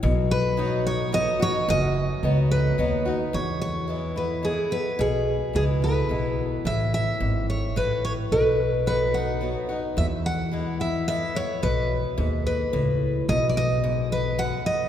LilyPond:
<<
  \new Staff \with { instrumentName = "Steel-string acoustic guitar" } { \time 3/4 \key e \major \tempo 4 = 109 r8 b'4 cis''8 dis''8 cis''8 | dis''4. b'4. | cis''8 cis''4 b'8 gis'8 b'8 | gis'4 gis'8 b'4. |
e''8 e''4 cis''8 b'8 cis''8 | b'4 b'8 fis''4 r8 | e''8 fis''4 e''8 e''8 cis''8 | b'4. b'4. |
dis''16. d''32 dis''4 b'8 fis''8 dis''8 | }
  \new Staff \with { instrumentName = "Steel-string acoustic guitar" } { \time 3/4 \key e \major << { r4 <fis b dis' fis'>4 <fis b dis' fis'>8 <dis' fis'>8 | r4 <fis b dis' fis'>4 <fis b dis' fis'>8 <dis' fis'>8 | r4 <e gis b e'>8 <b e'>8 <e gis b e'>8 <b e'>8 | r4 <e gis b e'>8 <b e'>8 <e gis b e'>4 |
r2. | r4 <fis b dis' fis'>8 <dis' fis'>8 <fis b dis' fis'>8 <dis' fis'>8 | r4 <e gis b e'>8 <b e'>8 <e gis b e'>8 <b e'>8 | r2. |
r2. | } \\ { b,2 r4 | fis,2 r4 | e,2 r4 | b,2 r4 |
a,4 gis,4 a,4 | b,2 r4 | e,2 r4 | b,4 gis,4 a,4 |
b,4 gis,4 fis,4 | } >> }
  \new Staff \with { instrumentName = "Upright bass" } { \clef bass \time 3/4 \key e \major b,,2. | fis,,4 cis,4 dis,4 | e,2. | b,,4 cis,4 b,,4 |
a,,4 gis,,4 a,,4 | b,,2. | e,2. | b,,4 dis,4 cis,4 |
b,,2. | }
>>